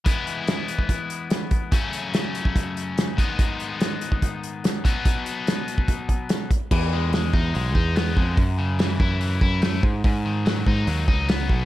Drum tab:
CC |----------------|----------------|----------------|----------------|
HH |x-x-x-x-x-x-x-x-|x-x-x-x-x-x-x-x-|x-x-x-x-x-x-x-x-|x-x-x-x-x-x-x-x-|
SD |----o-------o---|----o-------o---|----o-------o---|----o-------o---|
BD |o------oo-----o-|o------oo-----o-|o------oo-----o-|o------oo-o---o-|

CC |x---------------|----------------|----------------|
HH |----o---o---o---|o---o---o---o---|o---o---o---o---|
SD |----o-------o---|----o-------o---|----o-------o---|
BD |o-----o---o---o-|o-----o---o---o-|o-----o---o---o-|